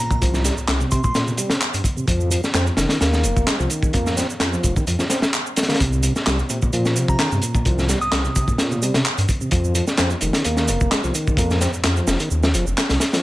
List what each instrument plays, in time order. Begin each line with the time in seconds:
Already playing: impact
0.00 tonewheel organ A#2, synth bell A#5
0.11 kick, shaker
0.21 detuned saw bass C2, tonewheel organ F3, kick, closed hi-hat, shaker
0.34 snare, shaker
0.44 tonewheel organ G3, snare, closed hi-hat, shaker
0.57 detuned saw bass C2, shaker
0.68 detuned saw bass C2, snare, clap, closed hi-hat, shaker
0.80 tonewheel organ C3, shaker
0.91 detuned saw bass C3, synth bell C6, kick, closed hi-hat, shaker
1.04 tonewheel organ A#2, synth bell C6, kick, shaker
1.15 detuned saw bass A#2, snare, closed hi-hat, shaker
1.27 tonewheel organ C3, shaker
1.37 detuned saw bass C3, tonewheel organ G3, closed hi-hat, shaker
1.50 detuned saw bass C3, snare, closed hi-hat, shaker
1.61 clap, shaker
1.74 detuned saw bass G2, closed hi-hat, shaker
1.84 kick, closed hi-hat, shaker
1.97 tonewheel organ C3, shaker
2.08 detuned saw bass F2, tonewheel organ F3, kick, closed hi-hat, shaker
2.20 shaker
2.31 tonewheel organ F3, closed hi-hat, shaker
2.44 snare, shaker
2.54 detuned saw bass F2, tonewheel organ C4, snare, clap, closed hi-hat, shaker
2.67 shaker
2.77 detuned saw bass F1, tonewheel organ D#3, snare, closed hi-hat, shaker
2.89 tonewheel organ D#3, snare, closed hi-hat, shaker
3.01 detuned saw bass D#2, tonewheel organ A#3, snare, closed hi-hat, shaker
3.13 snare, shaker
3.23 detuned saw bass F1, closed hi-hat, shaker
3.36 detuned saw bass F1, kick, shaker
3.47 tonewheel organ G#3, snare, clap, closed hi-hat, shaker
3.60 detuned saw bass C2, tonewheel organ F3, shaker
3.70 tonewheel organ D#3, closed hi-hat, shaker
3.83 kick, shaker
3.93 detuned saw bass F2, tonewheel organ A#3, kick, closed hi-hat, shaker
4.06 snare, shaker
4.17 tonewheel organ C4, snare, closed hi-hat, shaker
4.30 detuned saw bass F2, shaker
4.40 detuned saw bass F2, snare, clap, closed hi-hat, shaker
4.53 tonewheel organ F3, shaker
4.63 detuned saw bass F1, kick, closed hi-hat, shaker
4.76 tonewheel organ D#3, kick, shaker
4.87 detuned saw bass F2, closed hi-hat, shaker
4.99 tonewheel organ F3, snare, shaker
5.10 tonewheel organ C4, snare, closed hi-hat, shaker
5.22 snare, shaker
5.34 clap, shaker
5.46 shaker
5.56 snare, closed hi-hat, shaker
5.63 snare, closed hi-hat
5.68 detuned saw bass D3, tonewheel organ A#3, snare, closed hi-hat, shaker
5.74 snare, closed hi-hat
5.80 detuned saw bass C2, tonewheel organ C3, kick, closed hi-hat, shaker
5.93 shaker
6.03 tonewheel organ C3, closed hi-hat, shaker
6.16 snare, shaker
6.26 detuned saw bass C2, tonewheel organ G3, snare, clap, closed hi-hat, shaker
6.39 shaker
6.50 tonewheel organ A#2, detuned saw bass C3, closed hi-hat, shaker
6.62 tonewheel organ A#2, kick, shaker
6.73 detuned saw bass A#2, tonewheel organ F3, closed hi-hat, shaker
6.85 snare, shaker
6.96 detuned saw bass C3, closed hi-hat, shaker
7.08 detuned saw bass C3, synth bell A#5, kick, shaker
7.19 tonewheel organ D#3, synth bell A#5, snare, clap, closed hi-hat, shaker
7.32 detuned saw bass G2, tonewheel organ C3, shaker
7.42 tonewheel organ A#2, closed hi-hat, shaker
7.55 kick, shaker
7.65 detuned saw bass C2, tonewheel organ F3, kick, closed hi-hat, shaker
7.78 snare, shaker
7.88 tonewheel organ G3, snare, closed hi-hat, shaker
8.01 detuned saw bass C2, synth bell D#6, shaker
8.12 detuned saw bass C2, snare, clap, closed hi-hat, shaker
8.25 tonewheel organ C3, shaker
8.36 detuned saw bass C3, kick, closed hi-hat, shaker
8.48 tonewheel organ A#2, kick, shaker
8.58 detuned saw bass A#2, snare, closed hi-hat, shaker
8.71 tonewheel organ C3, shaker
8.82 detuned saw bass C3, tonewheel organ G3, closed hi-hat, shaker
8.94 detuned saw bass C3, snare, closed hi-hat, shaker
9.06 clap, shaker
9.18 detuned saw bass G2, closed hi-hat, shaker
9.29 kick, closed hi-hat, shaker
9.41 tonewheel organ C3, shaker
9.51 detuned saw bass F2, tonewheel organ F3, kick, closed hi-hat, shaker
9.64 shaker
9.75 tonewheel organ F3, closed hi-hat, shaker
9.87 snare, shaker
9.98 detuned saw bass F2, tonewheel organ C4, snare, clap, closed hi-hat, shaker
10.10 shaker
10.21 detuned saw bass F1, tonewheel organ D#3, closed hi-hat, shaker
10.33 tonewheel organ D#3, snare, closed hi-hat, shaker
10.44 detuned saw bass D#2, tonewheel organ A#3, closed hi-hat, shaker
10.57 snare, shaker
10.68 detuned saw bass F1, closed hi-hat, shaker
10.81 detuned saw bass F1, kick, shaker
10.91 tonewheel organ G#3, snare, clap, closed hi-hat, shaker
11.04 detuned saw bass C2, tonewheel organ F3, shaker
11.15 tonewheel organ D#3, closed hi-hat, shaker
11.27 kick, shaker
11.37 detuned saw bass F2, tonewheel organ A#3, kick, closed hi-hat, shaker
11.50 snare, shaker
11.61 tonewheel organ C4, snare, closed hi-hat, shaker
11.74 detuned saw bass F2, shaker
11.84 detuned saw bass F2, snare, clap, closed hi-hat, shaker
11.97 tonewheel organ F3, shaker
12.07 detuned saw bass F1, snare, shaker
12.20 tonewheel organ D#3, closed hi-hat, shaker
12.31 detuned saw bass D#2, shaker
12.43 tonewheel organ F3, snare, shaker
12.54 detuned saw bass F1, tonewheel organ F3, closed hi-hat, shaker
12.67 detuned saw bass F1, shaker
12.78 snare, clap, closed hi-hat, shaker
12.89 detuned saw bass C2, snare, closed hi-hat, shaker
13.00 snare, closed hi-hat, shaker
13.13 tonewheel organ F3, snare, closed hi-hat, shaker